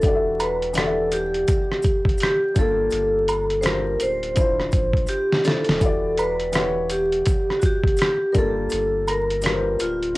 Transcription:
Already playing: A4
0.02 E1 E3 D4 F#4, kick, closed hi-hat, maracas
0.07 G4 D5
0.15 E5
0.40 B4, closed hi-hat, high woodblock, maracas
0.62 closed hi-hat
0.73 E3 D4 F#5, closed hi-hat, maracas
0.78 G4 A4 D5, cross-stick
0.86 E5
1.12 G4, closed hi-hat, maracas
1.34 closed hi-hat
1.48 kick, closed hi-hat, maracas
1.72 cross-stick
1.82 kick, closed hi-hat, maracas
2.05 F#1, kick
2.09 closed hi-hat
2.18 closed hi-hat, maracas
2.22 G4, cross-stick
2.54 G1 G3 D4 F4, kick, closed hi-hat, maracas
2.59 A#3 A4
2.91 G1, closed hi-hat, maracas
3.28 closed hi-hat, high woodblock, maracas
3.50 closed hi-hat
3.61 G3 D4 F4 C5, closed hi-hat, maracas
3.66 A#4, cross-stick
3.74 C5
4.00 D1 C5, closed hi-hat, maracas
4.23 closed hi-hat
4.35 D1 D3 D4 E4, kick, closed hi-hat, maracas
4.39 F4 C5
4.60 cross-stick
4.72 A1, kick, closed hi-hat, maracas
4.94 kick, closed hi-hat
5.07 G4, closed hi-hat, maracas
5.33 snare
5.44 D3 D4 E4 A4, closed hi-hat, maracas
5.48 F4 C5, snare
5.64 D#1, closed hi-hat
5.69 snare
5.80 E1 E3 E4 F#4, kick, closed hi-hat, maracas
5.84 G4 D5
6.18 B4, closed hi-hat, high woodblock, maracas
6.40 closed hi-hat
6.52 E3 E4 F#5, cross-stick, closed hi-hat, maracas
6.57 G4 C#5
6.90 G4, closed hi-hat, maracas
7.12 closed hi-hat
7.25 kick, closed hi-hat, maracas
7.50 cross-stick
7.59 F#4, kick, closed hi-hat, maracas
7.66 G4
7.83 F#1, kick, closed hi-hat
7.97 closed hi-hat, maracas
8.02 G4, cross-stick
8.32 G1 G3 D4 F4 A#4, kick, closed hi-hat, maracas
8.37 A#3 A4
8.70 G1, closed hi-hat, maracas
9.07 A#4, closed hi-hat, high woodblock, maracas
9.30 closed hi-hat
9.42 G3 D4 F4, closed hi-hat, maracas
9.46 A#4 B4, cross-stick
9.54 C5
9.79 D1 F4, closed hi-hat, maracas
10.03 closed hi-hat
10.14 D3

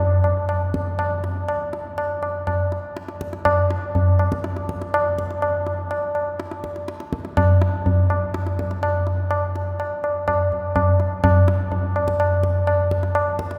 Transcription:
0.24 tabla na
0.49 tabla na
0.74 tabla ke
0.99 tabla na
1.24 tabla te
1.48 tabla na
1.73 tabla te
1.98 tabla na
2.23 tabla na
2.47 tabla na, tabla ge
2.72 tabla te
2.97 tabla te
3.08 tabla te
3.21 tabla ke
3.33 tabla te
3.45 tabla na, tabla ge
3.70 tabla te
3.95 tabla tin, tabla ge
4.19 tabla na
4.32 tabla ke
4.44 tabla te
4.56 tabla te
4.69 tabla ke
4.82 tabla te
4.94 tabla na
5.18 tabla ke
5.31 tabla te
5.42 tabla na
5.67 tabla te
5.91 tabla na
6.15 tabla na
6.40 tabla te
6.51 tabla te
6.64 tabla ke
6.76 tabla te
6.88 tabla te
7.00 tabla te
7.13 tabla ke
7.25 tabla te
7.37 tabla na, tabla ge
7.62 tabla te
7.86 tabla tin, tabla ge
8.10 tabla na
8.34 tabla te
8.47 tabla te
8.59 tabla ke
8.71 tabla te
8.83 tabla na
9.07 tabla te
9.31 tabla na
9.56 tabla te
9.80 tabla na
10.04 tabla na
10.28 tabla na, tabla ge
10.52 tabla ge
10.76 tabla na, tabla ge
11.00 tabla te
11.24 tabla na, tabla ge
11.48 tabla te
11.72 tabla tin, tabla ge
11.96 tabla na
12.08 tabla ke
12.20 tabla na
12.43 tabla ke
12.67 tabla na
12.91 tabla ke
13.03 tabla te
13.15 tabla na
13.39 tabla ke
13.51 tabla te

